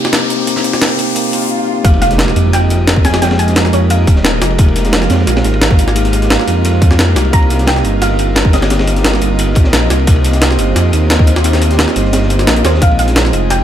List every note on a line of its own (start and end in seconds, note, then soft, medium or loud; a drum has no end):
0.00 1.46 C3 medium
0.00 0.02 A#3 medium
0.00 0.10 A#3 medium
0.00 0.04 C4 medium
0.00 0.11 C4 medium
0.00 0.06 D#4 medium
0.00 1.46 D#4 medium
0.00 0.08 G4 medium
0.00 1.46 G4 medium
0.00 1.46 A#4 medium
0.00 riser medium
0.05 0.12 D#4 medium
0.05 0.13 G4 medium
0.05 snare soft
0.12 0.35 A#3 medium
0.12 0.37 C4 medium
0.12 0.37 D#4 medium
0.12 0.38 G4 medium
0.12 snare loud
0.12 closed hi-hat medium
0.30 closed hi-hat medium
0.36 0.45 A#3 medium
0.36 0.46 C4 medium
0.36 0.46 D#4 medium
0.42 0.47 G4 loud
0.46 0.62 A#3 medium
0.46 0.63 C4 medium
0.46 0.63 D#4 medium
0.46 0.64 G4 loud
0.46 closed hi-hat loud
0.56 snare soft
0.63 0.79 A#3 medium
0.63 0.80 C4 medium
0.63 0.81 D#4 medium
0.63 0.81 G4 medium
0.63 closed hi-hat medium
0.73 snare soft
0.73 closed hi-hat soft
0.80 0.96 A#3 medium
0.80 0.97 C4 medium
0.80 0.98 D#4 medium
0.80 0.98 G4 medium
0.80 snare loud
0.80 closed hi-hat medium
0.98 1.13 A#3 medium
0.98 1.14 C4 medium
0.98 1.15 D#4 medium
0.98 1.15 G4 medium
0.98 closed hi-hat medium
1.15 1.31 A#3 medium
1.15 1.32 C4 medium
1.15 1.32 D#4 medium
1.15 1.32 G4 loud
1.15 closed hi-hat loud
1.15 swell medium
1.32 1.48 A#3 medium
1.32 1.49 C4 medium
1.32 1.49 D#4 medium
1.32 1.50 G4 loud
1.32 closed hi-hat medium
1.42 closed hi-hat soft
1.83 2.35 F1 loud
1.83 2.07 G#3 medium
1.83 7.29 G#3 medium
1.83 2.08 A#3 medium
1.83 2.09 D#4 medium
1.83 12.78 F4 medium
1.83 2.09 G4 medium
1.83 7.29 A#4 medium
1.83 4.56 D#5 medium
1.83 1.92 F5 loud
1.83 kick loud
1.83 closed hi-hat medium
1.83 ride medium
1.83 impact medium
1.94 ride soft
2.01 2.50 F5 loud
2.01 snare soft
2.01 closed hi-hat medium
2.01 ride medium
2.08 3.18 G#3 medium
2.08 3.19 A#3 medium
2.08 3.20 D#4 medium
2.08 snare soft
2.08 closed hi-hat soft
2.13 3.21 G4 loud
2.18 snare loud
2.18 closed hi-hat loud
2.18 ride medium
2.28 snare soft
2.36 3.72 F2 medium
2.36 closed hi-hat medium
2.36 ride medium
2.53 3.06 G5 loud
2.53 snare soft
2.53 closed hi-hat loud
2.53 ride medium
2.70 closed hi-hat medium
2.70 ride medium
2.87 snare loud
2.87 closed hi-hat loud
2.87 ride medium
2.96 kick loud
3.05 3.21 G#5 loud
3.05 snare loud
3.05 closed hi-hat medium
3.05 ride medium
3.14 snare loud
3.14 snare medium
3.14 ride medium
3.20 3.44 G#3 medium
3.20 3.45 A#3 medium
3.20 3.46 D#4 medium
3.20 3.46 G4 medium
3.20 3.38 G5 loud
3.20 snare loud
3.20 closed hi-hat medium
3.20 ride medium
3.31 snare loud
3.31 ride medium
3.39 3.74 G#5 loud
3.39 closed hi-hat medium
3.39 ride medium
3.45 4.55 G#3 medium
3.45 4.56 A#3 medium
3.45 4.57 D#4 medium
3.45 snare soft
3.45 closed hi-hat soft
3.50 4.58 G4 medium
3.56 snare loud
3.56 closed hi-hat medium
3.56 ride medium
3.65 snare soft
3.73 4.06 F2 medium
3.73 3.89 C#5 medium
3.73 closed hi-hat medium
3.73 ride medium
3.90 4.38 F5 medium
3.90 closed hi-hat loud
3.90 ride medium
4.07 4.40 D#1 medium
4.07 kick loud
4.07 closed hi-hat medium
4.07 ride medium
4.16 snare soft
4.24 snare loud
4.24 closed hi-hat loud
4.24 ride medium
4.34 ride soft
4.42 5.09 F1 medium
4.42 snare medium
4.42 closed hi-hat medium
4.42 ride medium
4.50 ride soft
4.57 4.81 G#3 medium
4.57 4.83 A#3 medium
4.57 4.83 D#4 medium
4.57 4.83 G4 medium
4.57 7.30 F5 medium
4.57 kick loud
4.57 closed hi-hat medium
4.57 ride medium
4.68 ride soft
4.76 snare soft
4.76 closed hi-hat medium
4.76 ride medium
4.82 5.93 G#3 medium
4.82 5.94 A#3 medium
4.82 5.94 D#4 medium
4.82 snare soft
4.82 closed hi-hat soft
4.88 5.95 G4 medium
4.93 snare loud
4.93 closed hi-hat medium
4.93 ride medium
5.02 snare soft
5.10 5.26 F2 medium
5.10 snare loud
5.10 closed hi-hat medium
5.10 ride medium
5.19 snare soft
5.27 5.43 A#1 medium
5.27 snare soft
5.27 closed hi-hat medium
5.27 ride medium
5.36 snare loud
5.36 ride medium
5.44 6.38 G#1 loud
5.44 snare soft
5.44 closed hi-hat medium
5.54 ride medium
5.61 snare loud
5.61 closed hi-hat medium
5.61 ride medium
5.70 kick loud
5.70 snare medium
5.79 closed hi-hat medium
5.79 ride medium
5.88 snare soft
5.95 6.18 G#3 medium
5.95 6.20 A#3 medium
5.95 6.20 D#4 medium
5.95 6.21 G4 loud
5.95 closed hi-hat medium
5.95 ride medium
6.05 snare soft
6.05 closed hi-hat soft
6.13 closed hi-hat medium
6.13 ride medium
6.19 7.05 G#3 medium
6.19 7.06 A#3 medium
6.19 7.06 D#4 medium
6.19 snare soft
6.19 closed hi-hat soft
6.25 7.07 G4 medium
6.30 snare loud
6.30 closed hi-hat medium
6.30 ride medium
6.39 snare medium
6.39 snare soft
6.47 7.15 F2 medium
6.47 closed hi-hat medium
6.47 ride medium
6.65 closed hi-hat medium
6.65 ride medium
6.82 kick loud
6.82 closed hi-hat medium
6.82 ride medium
6.91 snare medium
6.91 snare soft
6.99 snare loud
6.99 closed hi-hat medium
6.99 ride medium
7.06 7.30 G#3 medium
7.06 7.30 A#3 medium
7.06 7.31 D#4 medium
7.06 7.32 G4 medium
7.06 ride soft
7.16 7.31 C2 medium
7.16 snare medium
7.16 closed hi-hat medium
7.16 ride medium
7.25 ride soft
7.31 7.83 C2 loud
7.31 7.55 A#3 medium
7.31 7.57 C4 medium
7.31 7.57 D#4 medium
7.31 7.58 G4 medium
7.31 10.05 A#4 medium
7.31 13.64 D#5 medium
7.31 7.68 A#5 loud
7.31 kick loud
7.31 closed hi-hat medium
7.31 ride medium
7.42 ride soft
7.50 snare soft
7.50 closed hi-hat medium
7.50 ride medium
7.56 8.67 A#3 medium
7.56 8.68 C4 medium
7.56 8.69 D#4 medium
7.56 snare soft
7.56 closed hi-hat soft
7.62 8.70 G4 loud
7.67 8.03 G5 loud
7.67 snare loud
7.67 closed hi-hat medium
7.67 ride medium
7.76 snare medium
7.76 snare soft
7.85 9.20 G1 medium
7.85 closed hi-hat medium
7.85 ride medium
8.02 8.50 F5 loud
8.02 snare soft
8.02 closed hi-hat medium
8.02 ride medium
8.19 closed hi-hat medium
8.19 ride medium
8.36 snare loud
8.36 closed hi-hat medium
8.36 ride medium
8.45 kick loud
8.53 9.01 D#5 medium
8.53 snare loud
8.53 closed hi-hat medium
8.53 ride medium
8.62 snare loud
8.62 snare soft
8.62 ride medium
8.69 8.92 A#3 medium
8.69 8.94 C4 medium
8.69 8.94 D#4 medium
8.69 8.95 G4 medium
8.69 snare loud
8.69 closed hi-hat medium
8.69 ride medium
8.79 snare loud
8.79 ride medium
8.87 closed hi-hat medium
8.87 ride medium
8.93 10.04 A#3 medium
8.93 10.05 C4 medium
8.93 10.06 D#4 medium
8.93 snare soft
8.93 closed hi-hat soft
8.99 10.07 G4 loud
9.04 snare loud
9.04 closed hi-hat medium
9.04 ride medium
9.13 snare medium
9.13 snare soft
9.22 9.55 G1 medium
9.22 closed hi-hat medium
9.22 ride medium
9.39 closed hi-hat loud
9.39 ride medium
9.55 9.89 A#1 medium
9.55 kick loud
9.55 closed hi-hat medium
9.55 ride medium
9.64 snare medium
9.73 snare loud
9.73 closed hi-hat medium
9.73 ride medium
9.83 ride soft
9.90 10.58 C2 medium
9.90 snare medium
9.90 closed hi-hat medium
9.90 ride medium
9.99 ride soft
10.06 10.30 A#3 medium
10.06 10.31 C4 medium
10.06 10.32 D#4 medium
10.06 10.32 G4 loud
10.06 12.79 C5 medium
10.06 kick loud
10.06 closed hi-hat medium
10.06 ride medium
10.16 ride soft
10.24 snare soft
10.24 closed hi-hat medium
10.24 ride medium
10.31 11.41 A#3 medium
10.31 11.42 C4 medium
10.31 11.43 D#4 medium
10.31 snare soft
10.31 closed hi-hat soft
10.36 11.44 G4 loud
10.42 snare loud
10.42 closed hi-hat loud
10.42 ride medium
10.51 snare medium
10.51 snare soft
10.59 10.74 G1 medium
10.59 closed hi-hat medium
10.59 ride medium
10.76 10.92 F2 medium
10.76 snare soft
10.76 closed hi-hat loud
10.76 ride medium
10.93 11.86 D#2 loud
10.93 closed hi-hat medium
10.93 ride medium
11.10 snare loud
11.10 closed hi-hat loud
11.10 ride medium
11.19 kick loud
11.27 closed hi-hat medium
11.27 ride medium
11.36 snare soft
11.43 11.67 A#3 medium
11.43 11.68 C4 medium
11.43 11.69 D#4 medium
11.43 11.69 G4 medium
11.43 closed hi-hat loud
11.43 ride medium
11.53 snare soft
11.53 closed hi-hat soft
11.62 closed hi-hat medium
11.62 ride medium
11.68 12.78 A#3 medium
11.68 12.79 C4 medium
11.68 12.80 D#4 medium
11.68 snare soft
11.68 closed hi-hat soft
11.73 12.81 G4 loud
11.79 snare loud
11.79 closed hi-hat loud
11.79 ride medium
11.88 snare medium
11.88 snare soft
11.96 12.47 G1 medium
11.96 snare soft
11.96 closed hi-hat medium
11.96 ride medium
12.05 snare soft
12.13 snare loud
12.13 closed hi-hat loud
12.13 ride medium
12.13 swell medium
12.22 snare soft
12.30 closed hi-hat medium
12.30 ride medium
12.39 snare soft
12.39 closed hi-hat soft
12.47 12.63 A#1 medium
12.47 snare loud
12.47 closed hi-hat loud
12.47 ride medium
12.56 closed hi-hat soft
12.56 ride soft
12.65 12.80 D#2 loud
12.65 12.82 C5 medium
12.65 snare loud
12.65 snare medium
12.65 closed hi-hat medium
12.65 ride medium
12.74 snare soft
12.80 13.32 A#1 loud
12.80 13.04 G#3 medium
12.80 13.05 C4 medium
12.80 13.06 D#4 medium
12.80 13.06 F4 medium
12.80 13.64 G#4 medium
12.80 13.64 C5 medium
12.80 12.98 F5 loud
12.80 kick loud
12.80 closed hi-hat loud
12.80 ride medium
12.91 ride soft
12.99 13.52 F5 loud
12.99 snare soft
12.99 closed hi-hat medium
12.99 ride medium
13.05 13.64 G#3 medium
13.05 13.64 C4 medium
13.05 13.64 D#4 medium
13.05 snare soft
13.05 closed hi-hat soft
13.11 13.64 F4 medium
13.16 snare loud
13.16 closed hi-hat loud
13.16 ride medium
13.25 snare soft
13.33 13.64 F1 medium
13.33 closed hi-hat medium
13.33 ride medium
13.50 13.64 G5 loud
13.50 snare soft
13.50 closed hi-hat loud
13.50 ride medium